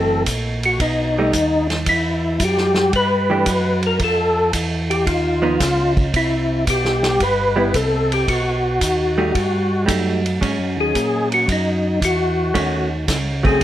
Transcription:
Already playing: F#1 E3 A3 C4 A4
0.26 A#1, kick, hi-hat pedal, ride
0.63 F#4, ride
0.80 B1 D#4, kick, ride
1.18 G3 A3 D#4
1.33 D#2, kick, hi-hat pedal, ride
1.70 snare, ride
1.86 E2 E4, kick, ride
2.40 F#2, kick, hi-hat pedal, ride
2.45 G4
2.57 snare
2.75 snare
2.93 G2 B4, kick, ride
3.30 E3 A3 D4 G4
3.46 F#2, kick, hi-hat pedal, ride
3.82 ride
3.87 A#4
3.99 F2, kick, ride
4.04 A4
4.53 E2, kick, hi-hat pedal, ride
4.90 G4, ride
5.06 D#2 F4, kick, ride
5.42 F3 B3 D#4
5.60 C#2, kick, snare, hi-hat pedal, ride
5.97 kick, ride
6.14 C2 E4, kick, ride
6.67 B1 G4, kick, hi-hat pedal, ride
6.85 snare
7.03 snare, ride
7.20 G1 B4, kick, ride
7.56 G3 B3 E4
7.74 C2 A4, kick, hi-hat pedal, ride
8.12 G4, ride
8.28 B1 F#4, kick, ride
8.81 D#2, kick, hi-hat pedal, ride
9.18 G3 A3 D#4
9.34 G2, kick, ride
9.86 F#2 G3 A3 D#4, kick, hi-hat pedal, ride
10.26 ride
10.41 G#2 F#3 C#4, kick, ride
10.58 F#2
10.77 D#2 G#4
10.95 A#2, kick, hi-hat pedal, ride
11.32 F#4, ride
11.48 F#2, kick, ride
11.52 D#4
12.01 E2 F#4, kick, hi-hat pedal, ride
12.54 D#2 D#3 A3 C#4 F#4, kick, ride
13.08 C#2, kick, snare, hi-hat pedal, ride
13.43 F#3 A3 C4 G#4, kick, ride
13.61 D#2, ride

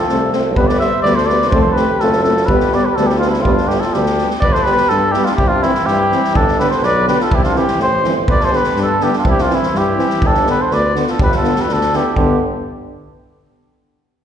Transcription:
Already playing: A4
0.00 F4
0.08 C2 A3 C4, snare
0.32 A3 C4, snare
0.56 G1 G3 B3 G4 B4, kick
0.67 B4 D5, snare
0.79 G3 B3 C5 E5, snare
1.02 D2 G3 B3 D5, snare
1.07 B4
1.15 A4 C5, snare
1.26 G3 B3 B4 D5, snare
1.42 snare
1.50 F1 A3 C4 A4 C5, kick
1.61 C5
1.65 A4
1.73 C4 B4, snare
1.77 A3 G4
2.00 F#1 A3 C4 F4 A4, snare
2.12 snare
2.23 A3 C4 F4 A4, snare
2.37 snare
2.46 G1 G3 B3 B4, kick
2.51 G4
2.60 snare
2.72 G3 B3 B4 D5, snare
2.85 G4 B4
2.96 D2 G3 B3 D4 A4, snare
3.07 G4, snare
3.12 E4
3.19 G3 B3 F4, snare
3.26 D4
3.30 E4, snare
3.38 C4 F4
3.45 G1 G3 B3, kick
3.50 D4
3.58 snare
3.68 G3 B3 G4, snare
3.74 E4
3.80 A4, snare
3.86 F4
3.93 D2 G3 B3 G4, snare
3.98 D4
4.06 snare
4.18 G3 B3, snare
4.31 snare
4.40 G1 B4 D5, kick
4.52 A4 C5, snare
4.63 G4 B4, snare
4.67 G3 B3
4.77 snare
4.89 G2 D4 A4, snare
5.12 G3 B3 E4 G4, snare
5.25 D4 F4, snare
5.35 E4 G4, kick
5.40 C2
5.48 D4 F4
5.62 E3 C4 E4, snare
5.75 snare
5.86 G2 E4 G4, snare
6.12 E3 C4, snare
6.24 snare
6.35 G1 D4 A4, kick
6.48 snare
6.59 D3 B3 G4 B4, snare
6.70 A4 C5, snare
6.82 B1 B4 D5, snare
7.06 D3 B3 G4 B4, snare
7.20 F4 A4, snare
7.31 C2 E4 G4, kick
7.43 D4 F4, snare
7.55 E3 C4 E4 G4, snare
7.68 snare
7.79 A1 G4 C5, snare
8.03 G1 E3 C4, snare
8.28 G1 B4 D5, kick
8.40 A4, snare
8.45 C5
8.51 D3 B3 G4, snare
8.56 B4
8.64 snare
8.76 G2 D4, snare
8.82 A4
9.00 D3 B3 E4 G4, snare
9.13 D4, snare
9.18 F4
9.25 C2 E4, kick
9.29 G4
9.38 D4 F4, snare
9.49 E3 C4, snare
9.53 C4 E4
9.63 snare
9.74 G2 E4 G4, snare
9.97 E3 C4, snare
10.10 snare
10.22 G1, kick
10.26 D4 A4
10.34 snare
10.44 D3 B3, snare
10.49 G4 B4
10.60 A4 C5
10.71 D2 B4 D5, snare
10.94 D3 B3, snare
11.07 F4 A4, snare
11.19 G1 G4 B4, kick
11.32 F4, snare
11.37 A4
11.42 D3 B3, snare
11.56 G4, snare
11.62 B4
11.68 D2 D4, snare
11.73 A4
11.81 snare
11.92 D3 B3 E4, snare
11.96 G4
12.15 G1 D3 B3 D4 G4, kick

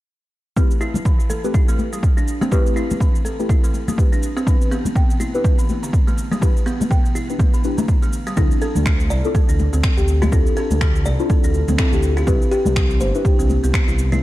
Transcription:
0.56 A3 C4 E4 G4 B4, kick, muted conga, shaker
0.71 shaker
0.81 E4, shaker
0.94 muted conga, high conga, low conga, shaker
1.05 E3, kick, shaker
1.20 shaker
1.30 A4, muted conga, high conga, shaker
1.44 A3 C4 E4 G4 B4, shaker
1.54 E4, kick, high conga, shaker
1.68 A3, shaker
1.78 muted conga, high conga, shaker
1.93 G3, shaker
2.03 kick, shaker
2.17 D4, muted conga, shaker
2.28 shaker
2.41 C4, high conga, low conga, shaker
2.51 A3 C4 E4 G4 B4, kick, muted conga, shaker
2.67 shaker
2.76 E4, shaker
2.91 muted conga, high conga, low conga, shaker
3.00 E3, kick, shaker
3.15 shaker
3.25 A4, muted conga, shaker
3.39 A3 C4 E4 G4 B4, shaker
3.49 E4, kick, high conga, low conga, shaker
3.64 A3, shaker
3.74 muted conga, shaker
3.88 G3, high conga, low conga, shaker
3.98 A3 C4 E4 G4 B4, kick, shaker
4.12 D4, muted conga, shaker
4.23 shaker
4.37 C4, shaker
4.47 E3 B3 D4 E4 G4 B4, kick, muted conga, shaker
4.62 shaker
4.71 B3, shaker
4.85 muted conga, high conga, low conga, shaker
4.96 B2, kick, shaker
5.10 shaker
5.20 E4, muted conga, high conga, shaker
5.34 B3 D4 E4 G4 B4, shaker
5.44 B3, kick, high conga, shaker
5.59 E3, shaker
5.69 muted conga, high conga, shaker
5.83 D3, shaker
5.93 kick, shaker
6.07 A3, muted conga, shaker
6.18 shaker
6.31 G3, high conga, low conga, shaker
6.41 E3 B3 D4 E4 G4 B4, kick, muted conga, shaker
6.57 shaker
6.66 B3, shaker
6.81 muted conga, high conga, low conga, shaker
6.91 B2, kick, shaker
7.06 shaker
7.15 E4, muted conga, high conga, shaker
7.30 B3 D4 E4 G4 B4, shaker
7.39 B3, kick, high conga, low conga, shaker
7.54 E3, shaker
7.64 B3 D4 E4 G4 B4, muted conga, shaker
7.78 D3, high conga, low conga, shaker
7.88 kick, low conga, shaker
8.02 A3, muted conga, shaker
8.13 shaker
8.27 G3, shaker
8.37 D2 C4 D4 E4 F4 A4, kick, muted conga, shaker
8.51 shaker
8.62 A4, shaker
8.75 D2, muted conga, high conga, low conga, shaker
8.86 A3, finger snap, kick, shaker
9.00 shaker
9.10 C2 D5, muted conga, high conga, shaker
9.25 C4 D4 E4 F4 A4, shaker
9.34 A4, kick, high conga, shaker
9.49 D2 D4, shaker
9.59 muted conga, high conga, shaker
9.73 D2 C4, shaker
9.83 finger snap, kick, shaker
9.97 D2 G4, muted conga, shaker
10.08 shaker
10.22 F4, high conga, low conga, shaker
10.32 D2 C4 D4 E4 F4 A4, kick, muted conga, shaker
10.47 shaker
10.57 A4, shaker
10.71 D2, muted conga, high conga, low conga, shaker
10.81 A3, finger snap, kick, shaker
10.96 shaker
11.05 C2 D5, muted conga, shaker
11.19 C4 D4 E4 F4 A4, shaker
11.30 A4, kick, high conga, low conga, shaker
11.44 D2 D4, shaker
11.54 muted conga, shaker
11.68 D2 C4, high conga, low conga, shaker
11.78 C4 D4 E4 F4 A4, finger snap, kick, shaker
11.92 D2 G4, muted conga, shaker
12.03 shaker
12.17 F4, shaker
12.27 C2 C4 D4 E4 G4 B4, kick, muted conga, shaker
12.42 shaker
12.52 G4, shaker
12.65 C2, muted conga, high conga, low conga, shaker
12.76 G3, finger snap, kick, shaker
12.91 shaker
13.01 G1 C5, muted conga, high conga, shaker
13.15 C4 D4 E4 G4 B4, shaker
13.25 G4, kick, high conga, shaker
13.39 C2 C4, shaker
13.48 muted conga, high conga, shaker
13.64 C2 B3, shaker
13.74 finger snap, kick, shaker
13.88 C2 E4, muted conga, shaker
13.99 shaker
14.12 E4, high conga, low conga, shaker

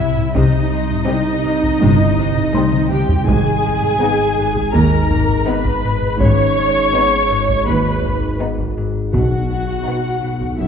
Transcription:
Already playing: C2 G3 C4 E4 E5
0.00 C3
0.17 taiko low-mid
0.35 C2 C3 D#4 D#5, taiko
0.73 C4
0.90 taiko low-mid
1.08 C3 G3 C4
1.45 C3
1.63 taiko
1.82 G1 G2 C3
2.18 C3, taiko
2.36 taiko low-mid
2.54 C3 G3 C4 C6, taiko high
2.72 taiko mid
2.91 C3 G4 G5, taiko mid
3.09 taiko low
3.28 G#1 G#2 G#4 G#5, taiko
3.65 G#3
3.83 taiko low-mid
4.01 G#2 B3 D#4
4.39 G#2
4.55 taiko
4.74 D#2 G#2 A#4 A#5
5.11 G#2, taiko
5.29 taiko low-mid
5.48 G#2 B3 D#4 B4 B5
5.65 taiko
5.84 G#2, taiko low-mid
6.02 taiko low-mid
6.20 G#1 G#2 C#4 C#5 C#6, taiko
6.57 G#3
6.94 G#2 B3 D#4
7.31 G#2
7.49 taiko
7.67 D#2 G#2 B4 B5
8.04 G#2, taiko
8.40 G#2 B3 D#4
8.58 taiko
8.77 G#2
9.13 B1 B2 F#4 F#5, taiko
9.50 B3
9.87 B2 B3 D#4
10.23 B2
10.41 taiko
10.59 F#1 F#2 B2 E3 E5

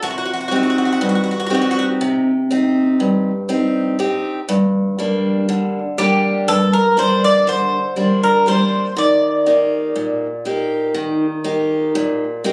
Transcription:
0.02 C3 F#4
0.10 F#4
0.18 F#4
0.26 F#4
0.33 F#4
0.41 F#4
0.48 C4 D#4 F#4
0.52 F#4 G4
0.63 F#4
0.70 F#4
0.78 F#4
0.85 F#4
0.93 F#4
1.01 G2 F#4
1.09 F#4
1.15 F#4
1.24 F#4
1.31 F#4
1.40 F#4
1.46 C4 F#4
1.51 D#4 F#4 G4
1.62 F#4
1.71 F#4
1.79 F#4
2.01 C3
2.51 C4 D#4 G4
3.00 G2
3.49 C4 D#4 G4
3.99 C4 D#4 G4
4.49 G2
4.99 G3 A#3 D4
5.49 D3
5.98 G3 A#3 D4 G4
6.48 G2 A4
6.73 A#4
6.97 G3 A#3 D4 C5
7.24 D5
7.47 D3 C5
7.96 G3 A#3 D4
8.23 A#4
8.46 G3 A#3 D4 C5
8.96 D#3 D5
9.46 A#3 D#4 G4
9.96 A#2
10.45 A#3 D#4 G4
10.94 D#3
11.44 A#3 D#4 G4
11.95 A#2
12.44 A#3 D#4 G4

